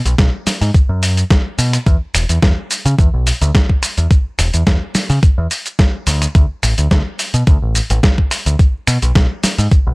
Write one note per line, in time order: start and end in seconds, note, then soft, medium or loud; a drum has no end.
0.05 0.13 B1 medium
0.05 closed hi-hat medium
0.05 shaker soft
0.18 0.28 B1 loud
0.18 kick loud
0.18 snare loud
0.18 closed hi-hat soft
0.18 shaker soft
0.47 muted picked electric bass stroke soft
0.47 snare medium
0.47 open hi-hat loud
0.47 shaker medium
0.61 0.70 G#2 medium
0.61 open hi-hat medium
0.61 shaker soft
0.74 kick loud
0.74 closed hi-hat medium
0.74 shaker soft
0.89 1.23 F#2 medium
1.03 open hi-hat loud
1.03 shaker medium
1.17 closed hi-hat medium
1.17 shaker soft
1.31 kick loud
1.31 snare loud
1.31 closed hi-hat soft
1.31 shaker soft
1.59 1.77 B2 medium
1.59 open hi-hat loud
1.59 shaker medium
1.73 finger snap medium
1.73 closed hi-hat medium
1.73 shaker soft
1.86 1.96 E2 loud
1.86 kick loud
1.86 closed hi-hat soft
1.86 shaker soft
2.14 2.24 E1 medium
2.14 finger snap medium
2.14 open hi-hat loud
2.14 shaker medium
2.29 2.38 E2 medium
2.29 closed hi-hat medium
2.29 shaker soft
2.43 2.52 E2 loud
2.43 kick loud
2.43 snare loud
2.43 closed hi-hat medium
2.43 shaker soft
2.71 open hi-hat loud
2.71 shaker medium
2.86 2.94 C#3 medium
2.86 closed hi-hat medium
2.86 shaker soft
2.99 3.08 E2 loud
2.99 kick loud
2.99 closed hi-hat soft
2.99 shaker soft
3.14 3.30 B1 medium
3.27 open hi-hat loud
3.27 shaker medium
3.42 3.50 D2 loud
3.42 closed hi-hat medium
3.42 shaker soft
3.55 kick loud
3.55 snare loud
3.55 closed hi-hat soft
3.55 shaker soft
3.70 kick medium
3.83 finger snap medium
3.83 open hi-hat loud
3.83 shaker medium
3.98 4.06 E2 medium
3.98 closed hi-hat medium
3.98 shaker soft
4.11 kick loud
4.11 closed hi-hat soft
4.11 shaker soft
4.39 4.48 E1 medium
4.39 finger snap medium
4.39 open hi-hat loud
4.39 shaker medium
4.54 4.62 E2 medium
4.54 closed hi-hat medium
4.54 shaker soft
4.67 kick loud
4.67 snare loud
4.67 closed hi-hat medium
4.67 shaker soft
4.95 muted picked electric bass stroke soft
4.95 snare medium
4.95 open hi-hat loud
4.95 shaker medium
5.10 5.18 C#3 loud
5.10 open hi-hat medium
5.10 shaker soft
5.23 kick loud
5.23 closed hi-hat medium
5.23 shaker soft
5.38 5.46 E2 medium
5.51 open hi-hat loud
5.51 shaker medium
5.66 closed hi-hat medium
5.66 shaker soft
5.79 kick loud
5.79 snare loud
5.79 closed hi-hat soft
5.79 shaker soft
6.07 6.25 D2 loud
6.07 open hi-hat loud
6.07 shaker medium
6.22 finger snap medium
6.22 closed hi-hat medium
6.22 shaker soft
6.35 6.44 D2 loud
6.35 kick loud
6.35 closed hi-hat medium
6.35 shaker soft
6.63 6.72 A1 medium
6.63 finger snap medium
6.63 open hi-hat loud
6.63 shaker medium
6.78 6.86 D2 medium
6.78 closed hi-hat medium
6.78 shaker soft
6.91 7.01 D2 loud
6.91 kick loud
6.91 snare loud
6.91 closed hi-hat medium
6.91 shaker soft
7.19 open hi-hat loud
7.19 shaker medium
7.34 7.42 B2 medium
7.34 closed hi-hat medium
7.34 shaker soft
7.47 7.57 D2 loud
7.47 kick loud
7.47 closed hi-hat medium
7.47 shaker soft
7.62 7.79 A1 medium
7.75 open hi-hat medium
7.75 shaker medium
7.90 7.98 A1 loud
7.90 closed hi-hat medium
7.90 shaker soft
8.03 kick loud
8.03 snare loud
8.03 closed hi-hat medium
8.03 shaker soft
8.18 kick medium
8.31 finger snap medium
8.31 open hi-hat loud
8.31 shaker medium
8.46 8.54 D2 medium
8.46 closed hi-hat medium
8.46 shaker soft
8.59 kick loud
8.59 closed hi-hat medium
8.59 shaker soft
8.87 8.97 B2 medium
8.87 finger snap medium
8.87 open hi-hat loud
8.87 shaker medium
9.02 9.11 B1 medium
9.02 closed hi-hat medium
9.02 shaker soft
9.15 9.25 B1 loud
9.15 kick loud
9.15 snare loud
9.15 closed hi-hat medium
9.15 shaker soft
9.43 muted picked electric bass stroke soft
9.43 snare medium
9.43 open hi-hat loud
9.43 shaker medium
9.58 9.67 G#2 medium
9.58 open hi-hat medium
9.58 shaker soft
9.71 kick loud
9.71 closed hi-hat medium
9.71 shaker soft
9.87 9.94 B1 medium